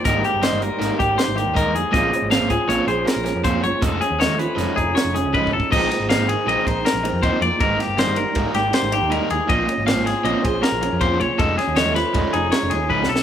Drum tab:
CC |------------------------------|------------------------------|------------------------------|x-----------------------------|
RD |------------------------------|------------------------------|------------------------------|---x--x--x--x--x--x--x--x--x--|
HH |x--x--x--x--x--x--x--x--x--x--|x--x--x--x--x--x--x--x--x--x--|x--x--x--x--x--x--x--x--------|------------------------------|
SD |------o-----o-----o-----------|------o-----------o--o--------|------o-----o-----o-----------|---o--o-----------o-----------|
T1 |------------------------------|------------------------------|------------------------o-----|------------------------------|
BD |o--------------o--------o-----|o--------o--------------o-----|o--------------o--------o-o-o-|o--------------o--------o-----|

CC |------------------------------|------------------------------|------------------------------|
RD |x--x--x--x--x--x--x--x--x--x--|x--x--x--x--x--x--x--x--x--x--|x--x--x--x--x--x--x--x--------|
HH |------------------------------|------------------------------|------------------------------|
SD |---o--o--------o--o-----------|------o--o--------o-----------|---o--o--o--------o-------o-o-|
T1 |------------------------------|------------------------------|------------------------------|
BD |o-----------o-----------------|o--------------o--------o-----|o-----------o-----------o-----|